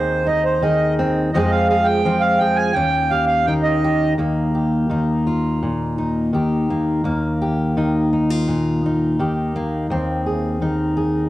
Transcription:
0.00 1.33 D#2 medium
0.00 0.60 D#3 medium
0.00 0.97 C4 medium
0.00 0.25 D#4 medium
0.00 0.61 G#4 medium
0.00 0.27 C5 medium
0.26 1.29 D#4 medium
0.26 0.44 D#5 medium
0.44 0.62 C5 medium
0.61 1.33 D#3 medium
0.61 1.29 G#4 medium
0.61 0.94 D#5 medium
0.99 1.29 C4 medium
1.33 2.72 F2 medium
1.33 2.04 F3 medium
1.33 2.76 G#3 medium
1.33 2.05 C4 medium
1.33 1.51 D#5 medium
1.37 1.69 G#4 medium
1.51 1.68 F5 medium
1.69 2.40 G#4 medium
1.69 1.87 F5 medium
1.84 2.22 G5 medium
2.05 2.71 F3 medium
2.05 2.72 C4 medium
2.20 2.39 F5 medium
2.38 2.72 G#4 medium
2.38 2.57 G5 medium
2.56 2.75 G#5 loud
2.73 4.17 D#2 medium
2.73 4.14 C#4 medium
2.73 3.11 G5 medium
3.10 3.82 G4 medium
3.10 3.25 F5 medium
3.27 3.46 F5 medium
3.45 4.89 D#3 medium
3.45 4.14 D#4 medium
3.45 3.54 G5 medium
3.63 4.13 D#5 medium
3.84 4.15 G4 medium
4.18 7.04 D#2 medium
4.18 6.68 A#3 medium
4.55 5.26 G4 soft
4.90 6.33 D#3 medium
4.90 5.98 D#4 medium
5.27 6.33 F4 soft
5.63 6.33 A#2 medium
5.98 7.77 D#4 soft
6.33 7.76 D#3 soft
6.33 7.00 G4 soft
6.70 7.00 A#3 soft
7.04 9.89 D#2 medium
7.04 9.54 A#3 medium
7.42 8.12 G4 medium
7.77 9.18 D#3 medium
7.77 8.12 D#4 medium
8.13 8.30 D#4 medium
8.30 9.19 F4 soft
8.48 9.19 A#2 medium
8.86 9.87 D#4 soft
9.19 10.61 D#3 medium
9.19 9.86 G4 soft
9.56 9.86 A#3 medium
9.90 11.29 D#2 medium
9.90 11.29 C4 medium
10.26 10.96 G#4 soft
10.62 11.29 D#3 medium
10.62 11.29 D#4 medium
10.97 11.29 G#4 medium

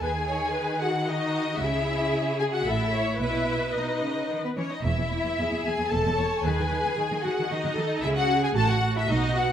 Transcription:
0.01 0.51 D#2 soft
0.01 1.57 D#3 soft
0.01 0.80 G#4 medium
0.01 0.09 B4 soft
0.01 0.79 G#5 medium
0.28 0.54 C#5 soft
0.54 0.80 B4 soft
0.81 1.08 F#4 soft
0.81 0.89 G#4 soft
0.81 1.07 F#5 medium
1.07 1.60 D#4 medium
1.07 1.59 F#4 soft
1.07 1.60 D#5 medium
1.59 2.09 C#2 soft
1.59 2.62 C#3 medium
1.59 2.39 E4 medium
1.59 2.67 G#4 medium
1.59 2.39 E5 medium
2.38 2.53 G#4 medium
2.38 2.44 G#5 medium
2.53 2.67 F#4 medium
2.53 2.66 F#5 medium
2.66 3.17 A1 soft
2.66 3.19 A2 medium
2.66 3.21 E4 medium
2.66 2.94 A4 medium
2.66 3.18 E5 medium
2.93 3.20 C#5 medium
3.19 3.71 B1 soft
3.19 3.70 B2 soft
3.19 3.75 E4 medium
3.19 4.54 B4 medium
3.19 3.73 E5 medium
3.73 4.01 B2 soft
3.73 4.43 D#4 soft
3.73 4.42 D#5 medium
4.02 4.30 C#3 soft
4.30 4.38 D#3 medium
4.43 4.49 B3 soft
4.43 4.49 B4 soft
4.57 4.65 E3 soft
4.57 4.71 C#4 soft
4.57 4.70 C#5 soft
4.71 4.85 D#4 soft
4.71 4.85 D#5 medium
4.83 4.97 E1 soft
4.83 4.89 E2 medium
4.83 5.65 E4 medium
4.83 5.63 E5 medium
4.97 5.03 E2 soft
5.10 5.16 E2 soft
5.24 5.30 E2 soft
5.38 5.44 E2 medium
5.38 5.88 G#4 soft
5.51 5.57 E2 soft
5.64 5.70 E2 soft
5.64 5.91 G#4 soft
5.64 5.91 G#5 medium
5.78 5.83 E2 soft
5.90 6.04 E1 medium
5.90 5.97 E2 medium
5.90 6.17 A4 soft
5.90 6.45 A4 medium
5.90 6.44 A5 medium
6.05 6.10 E2 soft
6.17 6.24 E2 soft
6.17 6.44 C#5 soft
6.43 6.57 D#2 medium
6.43 6.50 D#3 medium
6.43 7.24 G#4 medium
6.43 6.96 B4 medium
6.43 7.23 G#5 medium
6.58 6.64 D#3 soft
6.71 6.76 D#3 soft
6.84 6.90 D#3 soft
6.96 7.02 D#3 medium
6.96 7.48 G#4 medium
7.11 7.16 D#3 soft
7.23 7.29 D#3 soft
7.23 7.50 F#4 medium
7.23 7.49 F#5 medium
7.38 7.43 D#3 soft
7.50 7.55 D#3 medium
7.50 8.02 D#4 medium
7.50 7.76 F#4 soft
7.50 8.03 D#5 medium
7.64 7.69 D#3 soft
7.76 7.82 D#3 soft
7.76 8.03 A4 medium
8.02 8.52 C#2 medium
8.02 8.52 C#3 medium
8.02 8.16 E4 medium
8.02 8.56 G#4 medium
8.02 8.07 E5 medium
8.15 8.42 F#4 medium
8.15 8.41 F#5 medium
8.42 8.55 G#4 medium
8.42 8.49 G#5 medium
8.56 9.05 A1 medium
8.56 9.08 A2 medium
8.56 9.09 F#4 medium
8.56 8.69 A4 medium
8.56 8.69 A5 medium
8.68 8.77 F#4 medium
8.68 8.95 F#5 medium
8.96 9.01 E4 medium
8.96 9.10 E5 medium
9.08 9.52 B1 medium
9.08 9.52 B2 medium
9.08 9.35 D#4 medium
9.08 9.52 F#4 medium
9.08 9.37 D#5 medium
9.35 9.43 F#4 medium
9.35 9.52 F#5 medium

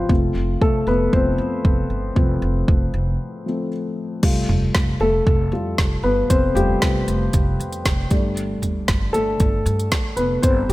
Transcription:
0.00 0.12 E3 soft
0.00 0.10 F3 medium
0.00 0.11 G3 soft
0.00 0.12 B3 medium
0.00 0.11 C4 medium
0.00 0.32 F4 medium
0.00 0.12 B4 medium
0.00 0.12 C5 medium
0.09 0.31 F1 medium
0.09 0.84 F3 soft
0.09 0.61 A3 soft
0.09 0.84 C4 soft
0.09 kick medium
0.35 0.56 F1 medium
0.61 0.83 F1 medium
0.61 0.86 A3 medium
0.61 0.88 A4 medium
0.61 kick medium
0.87 1.08 F1 medium
0.87 1.12 B3 medium
0.87 1.14 B4 medium
1.13 1.34 F1 medium
1.13 1.36 F3 soft
1.13 1.37 A3 soft
1.13 2.15 C4 medium
1.13 3.68 C5 medium
1.13 kick medium
1.38 1.60 F2 medium
1.65 1.86 F1 medium
1.65 kick loud
1.90 2.11 G1 medium
2.15 2.38 F1 medium
2.15 3.44 F3 soft
2.15 3.45 A3 soft
2.15 3.45 C4 soft
2.15 kick medium
2.42 2.63 F1 medium
2.68 2.90 F1 medium
2.68 kick loud
2.94 3.15 F1 medium
3.46 3.69 F3 soft
3.46 3.69 A3 soft
3.46 3.70 C4 soft
4.22 4.45 F1 medium
4.22 4.57 G3 soft
4.22 4.58 A3 soft
4.22 4.58 F4 soft
4.22 kick medium
4.22 crash medium
4.49 4.70 F1 medium
4.49 floor tom medium
4.75 4.96 F1 medium
4.75 kick loud
4.75 snare loud
5.00 5.22 F1 medium
5.00 5.51 A3 medium
5.00 6.00 A4 medium
5.27 5.48 F1 loud
5.27 kick medium
5.52 5.73 F2 medium
5.52 5.76 G3 soft
5.52 5.76 A3 soft
5.52 5.76 F4 soft
5.78 6.00 F1 medium
5.78 kick loud
5.78 snare medium
6.03 6.25 G1 medium
6.03 6.28 B3 medium
6.03 6.31 B4 medium
6.30 6.52 F1 medium
6.30 6.54 C4 medium
6.30 6.57 C5 medium
6.30 kick loud
6.30 closed hi-hat medium
6.54 6.77 F1 medium
6.54 8.07 G3 medium
6.54 7.29 A3 soft
6.54 7.29 F4 medium
6.54 8.07 G4 medium
6.54 closed hi-hat medium
6.54 floor tom medium
6.82 7.04 F1 medium
6.82 kick loud
6.82 snare loud
6.82 closed hi-hat medium
7.08 7.29 F1 medium
7.08 closed hi-hat medium
7.33 7.55 F1 medium
7.33 kick medium
7.33 closed hi-hat medium
7.60 7.81 F2 medium
7.60 closed hi-hat medium
7.73 closed hi-hat soft
7.85 8.06 F1 medium
7.85 kick loud
7.85 snare loud
7.85 closed hi-hat medium
8.10 8.54 G1 medium
8.10 10.14 G3 soft
8.10 9.14 A3 soft
8.10 10.14 D4 medium
8.10 kick medium
8.10 closed hi-hat medium
8.37 closed hi-hat medium
8.62 8.84 G1 medium
8.62 closed hi-hat medium
8.62 floor tom medium
8.88 9.10 G1 medium
8.88 kick loud
8.88 snare medium
8.88 closed hi-hat medium
9.13 9.36 G1 medium
9.13 10.15 A3 medium
9.13 10.13 A4 medium
9.13 closed hi-hat medium
9.40 9.62 G1 medium
9.40 kick medium
9.40 closed hi-hat medium
9.66 9.87 G2 medium
9.66 closed hi-hat medium
9.80 closed hi-hat soft
9.92 10.13 G1 medium
9.92 kick medium
9.92 snare loud
9.92 closed hi-hat medium
10.16 10.39 F1 medium
10.16 10.43 B3 medium
10.16 10.41 B4 medium
10.16 closed hi-hat medium
10.42 10.65 G1 loud
10.42 10.68 C4 medium
10.42 10.70 C5 medium
10.42 kick loud
10.42 closed hi-hat medium
10.69 10.73 G1 medium
10.69 10.73 G4 medium
10.69 floor tom medium

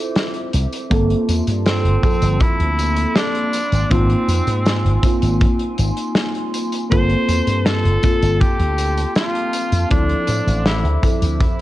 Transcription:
0.00 0.86 C4 medium
0.00 0.86 E4 medium
0.00 0.87 F4 medium
0.00 0.87 A4 medium
0.00 0.88 C5 medium
0.00 0.88 E5 medium
0.00 0.88 D6 medium
0.15 snare loud
0.15 closed hi-hat medium
0.15 tambourine soft
0.34 closed hi-hat soft
0.53 0.65 C2 medium
0.53 closed hi-hat loud
0.53 tambourine medium
0.72 closed hi-hat medium
0.72 tambourine soft
0.90 1.14 G1 loud
0.90 1.99 A#3 loud
0.90 9.87 A#3 medium
0.90 1.99 C4 medium
0.90 2.00 F4 medium
0.90 2.00 A4 loud
0.90 3.51 A5 medium
0.90 9.87 C6 medium
0.90 kick loud
0.90 closed hi-hat medium
0.90 tambourine soft
1.10 closed hi-hat soft
1.29 1.40 E2 medium
1.29 closed hi-hat loud
1.29 tambourine medium
1.47 1.86 G2 medium
1.47 closed hi-hat medium
1.47 tambourine soft
1.66 2.43 C4 loud
1.66 snare loud
1.66 closed hi-hat medium
1.66 tambourine soft
1.85 1.96 G1 medium
1.85 closed hi-hat soft
2.02 3.52 F3 medium
2.02 3.51 A#3 medium
2.02 3.51 C4 medium
2.02 3.52 A4 loud
2.02 kick loud
2.02 closed hi-hat medium
2.02 tambourine medium
2.22 2.40 G1 loud
2.22 closed hi-hat medium
2.22 tambourine soft
2.40 3.18 E4 loud
2.40 muted slap bass stroke soft
2.40 kick loud
2.40 closed hi-hat medium
2.40 tambourine soft
2.60 3.04 D2 medium
2.60 closed hi-hat medium
2.79 closed hi-hat medium
2.79 tambourine medium
2.97 closed hi-hat medium
2.97 tambourine soft
3.16 3.93 D4 loud
3.16 snare loud
3.16 closed hi-hat medium
3.16 tambourine soft
3.35 closed hi-hat soft
3.53 6.88 G#5 medium
3.53 closed hi-hat loud
3.53 tambourine medium
3.72 3.84 G#1 medium
3.72 closed hi-hat medium
3.72 tambourine soft
3.90 4.14 G#1 medium
3.90 4.98 A#3 medium
3.90 4.99 C4 medium
3.90 5.41 C4 loud
3.90 4.99 D#4 medium
3.90 5.00 F4 medium
3.90 kick loud
3.90 closed hi-hat medium
3.90 tambourine soft
4.10 closed hi-hat soft
4.28 4.40 F2 medium
4.28 closed hi-hat loud
4.28 tambourine medium
4.47 4.86 G#2 medium
4.47 closed hi-hat medium
4.47 tambourine soft
4.66 snare loud
4.66 closed hi-hat medium
4.66 tambourine soft
4.85 4.96 G#1 loud
4.85 closed hi-hat soft
5.02 6.86 A#3 medium
5.02 6.86 C4 medium
5.02 6.87 D#4 medium
5.02 6.87 F4 medium
5.02 kick loud
5.02 closed hi-hat loud
5.02 tambourine medium
5.22 5.45 G#1 loud
5.22 closed hi-hat medium
5.22 tambourine soft
5.40 kick loud
5.40 closed hi-hat medium
5.40 tambourine soft
5.59 closed hi-hat soft
5.78 5.90 G#1 medium
5.78 closed hi-hat medium
5.78 tambourine medium
5.97 closed hi-hat medium
5.97 tambourine soft
6.15 snare loud
6.15 closed hi-hat medium
6.15 tambourine soft
6.35 closed hi-hat soft
6.54 closed hi-hat medium
6.54 tambourine medium
6.72 closed hi-hat medium
6.72 tambourine soft
6.90 7.14 G1 medium
6.90 7.98 A#3 loud
6.90 7.99 C4 medium
6.90 7.99 F4 medium
6.90 8.00 A4 loud
6.90 7.68 C5 loud
6.90 9.88 A5 medium
6.90 kick loud
6.90 closed hi-hat medium
6.90 tambourine soft
7.10 closed hi-hat soft
7.28 7.40 E2 medium
7.28 closed hi-hat loud
7.28 tambourine medium
7.47 7.87 G2 medium
7.47 closed hi-hat medium
7.47 tambourine soft
7.66 8.43 A4 loud
7.66 snare loud
7.66 closed hi-hat medium
7.66 tambourine soft
7.85 7.96 G1 medium
7.85 closed hi-hat soft
8.02 9.86 A#3 medium
8.02 9.86 C4 medium
8.02 9.87 F4 medium
8.02 9.87 A4 medium
8.02 kick loud
8.02 closed hi-hat loud
8.02 tambourine medium
8.22 8.41 G1 loud
8.22 closed hi-hat medium
8.22 tambourine soft
8.41 9.16 G4 loud
8.41 kick loud
8.41 closed hi-hat medium
8.41 tambourine soft
8.60 9.04 D2 loud
8.60 closed hi-hat soft
8.78 closed hi-hat loud
8.78 tambourine medium
8.97 closed hi-hat medium
8.97 tambourine soft
9.15 9.87 F4 loud
9.15 snare loud
9.15 closed hi-hat medium
9.15 tambourine soft
9.35 closed hi-hat soft
9.53 closed hi-hat loud
9.53 tambourine medium
9.72 9.84 F2 medium
9.72 closed hi-hat medium
9.72 tambourine soft
9.90 10.14 D2 medium
9.90 10.99 F3 medium
9.90 10.98 C4 medium
9.90 10.62 D4 loud
9.90 10.99 E4 medium
9.90 11.00 A4 medium
9.90 11.61 C5 medium
9.90 11.61 E5 medium
9.90 11.61 D6 medium
9.90 kick loud
9.90 closed hi-hat medium
9.90 tambourine soft
10.10 closed hi-hat soft
10.27 10.40 A2 medium
10.27 closed hi-hat medium
10.27 tambourine medium
10.47 10.85 A1 medium
10.47 closed hi-hat medium
10.47 tambourine soft
10.66 11.11 E4 medium
10.66 snare loud
10.66 closed hi-hat medium
10.66 tambourine soft
10.85 10.96 D2 loud
10.85 closed hi-hat soft
11.02 11.61 F3 medium
11.02 11.61 C4 medium
11.02 11.61 E4 medium
11.02 11.61 A4 medium
11.02 kick loud
11.02 closed hi-hat medium
11.02 tambourine medium
11.22 11.45 D2 loud
11.22 closed hi-hat medium
11.22 tambourine soft
11.40 11.61 E4 medium
11.40 kick loud
11.40 closed hi-hat medium
11.40 tambourine soft

